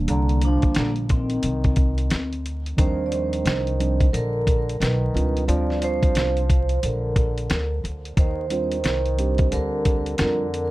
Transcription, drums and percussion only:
0.08 closed hi-hat
0.29 closed hi-hat
0.41 closed hi-hat
0.62 kick, closed hi-hat
0.74 snare, closed hi-hat
0.96 closed hi-hat
1.09 kick, closed hi-hat
1.30 closed hi-hat
1.43 closed hi-hat
1.64 kick, closed hi-hat
1.76 kick, closed hi-hat
1.98 closed hi-hat
2.10 snare, closed hi-hat
2.33 closed hi-hat
2.46 closed hi-hat
2.66 closed hi-hat
2.78 kick, closed hi-hat
3.12 closed hi-hat
3.33 closed hi-hat
3.46 snare, closed hi-hat
3.67 closed hi-hat
3.80 closed hi-hat
4.00 kick, closed hi-hat
4.14 closed hi-hat
4.47 kick, closed hi-hat
4.69 closed hi-hat
4.82 snare, closed hi-hat
5.17 closed hi-hat
5.37 closed hi-hat
5.49 closed hi-hat
5.70 snare
5.82 closed hi-hat
6.03 kick, closed hi-hat
6.15 snare, closed hi-hat
6.37 closed hi-hat
6.50 kick, closed hi-hat
6.69 closed hi-hat
6.83 closed hi-hat
7.16 kick, closed hi-hat
7.38 closed hi-hat
7.50 snare, closed hi-hat
7.85 closed hi-hat
8.05 closed hi-hat
8.17 kick, closed hi-hat
8.50 closed hi-hat
8.72 closed hi-hat
8.84 snare, closed hi-hat
9.06 closed hi-hat
9.19 closed hi-hat
9.38 kick, closed hi-hat
9.52 closed hi-hat
9.85 kick, closed hi-hat
10.06 closed hi-hat
10.18 snare, closed hi-hat
10.54 closed hi-hat

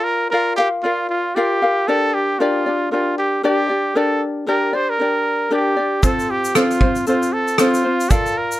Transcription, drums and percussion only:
6.03 kick, shaker
6.19 shaker
6.45 shaker
6.55 cross-stick, shaker
6.71 shaker
6.81 kick
6.95 shaker
7.07 shaker
7.22 shaker
7.48 shaker
7.58 cross-stick, shaker
7.74 shaker
8.00 shaker
8.11 kick, shaker
8.26 shaker
8.52 shaker

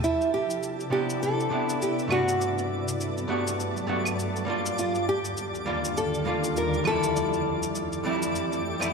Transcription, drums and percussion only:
0.04 cabasa
0.21 cabasa
0.50 cabasa
0.63 cabasa
0.80 cabasa
1.09 cabasa
1.23 cabasa
1.40 cabasa
1.69 cabasa
1.82 cabasa
1.99 cabasa
2.11 claves
2.28 cabasa
2.41 cabasa
2.58 cabasa
2.88 cabasa
3.00 cabasa
3.17 cabasa
3.47 cabasa
3.60 cabasa
3.77 cabasa
4.05 cabasa, claves
4.19 cabasa
4.36 cabasa
4.66 cabasa
4.78 cabasa
4.95 cabasa
5.25 cabasa
5.37 cabasa
5.55 cabasa
5.84 cabasa
5.97 cabasa
6.14 cabasa
6.44 cabasa
6.56 cabasa
6.74 cabasa
6.85 claves
7.03 cabasa
7.16 cabasa
7.33 cabasa
7.63 cabasa
7.75 cabasa
7.92 cabasa
8.22 cabasa
8.35 cabasa
8.52 cabasa
8.81 cabasa, claves

